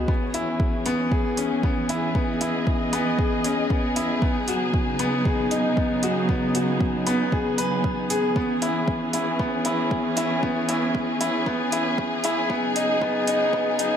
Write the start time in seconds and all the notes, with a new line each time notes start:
Already playing: B3 D#4 F#4 G#4
0.08 E3 B3 C#4 G#4, kick
0.34 E4, closed hi-hat
0.60 kick
0.86 B3, closed hi-hat
1.12 G#4, kick
1.37 C#4, closed hi-hat
1.63 B3, kick
1.89 E4, closed hi-hat
2.15 B3 D#5, kick
2.41 E4, closed hi-hat
2.67 kick
2.93 B3, closed hi-hat
3.19 G#4, kick
3.44 C#4, closed hi-hat
3.70 B3, kick
3.96 E4, closed hi-hat
4.21 C#3 F#3 B3 D#4, kick
4.48 F#4, closed hi-hat
4.74 kick
4.99 B3, closed hi-hat
5.25 G#4, kick
5.51 D#4, closed hi-hat
5.77 B3, kick
6.03 F#4, closed hi-hat
6.29 B3, kick
6.55 F#4, closed hi-hat
6.81 kick
7.07 B3, closed hi-hat
7.32 G#4, kick
7.58 B4, closed hi-hat
7.84 kick
8.10 G#4, closed hi-hat
8.36 E3 B3 C#4 G#4, kick
8.62 E4, closed hi-hat
8.88 kick
9.13 E4, closed hi-hat
9.39 B3, kick
9.65 E4, closed hi-hat
9.91 kick
10.17 E4, closed hi-hat
10.43 B3, kick
10.69 E4, closed hi-hat
10.95 kick
11.21 E4, closed hi-hat
11.46 B3, kick
11.72 E4, closed hi-hat
11.98 kick
12.24 E4, closed hi-hat
12.50 C#3 F#3 B3 D#4, kick
12.76 D#4, closed hi-hat
13.02 B3, kick
13.27 D#4, closed hi-hat
13.53 B3, kick
13.79 D#4, closed hi-hat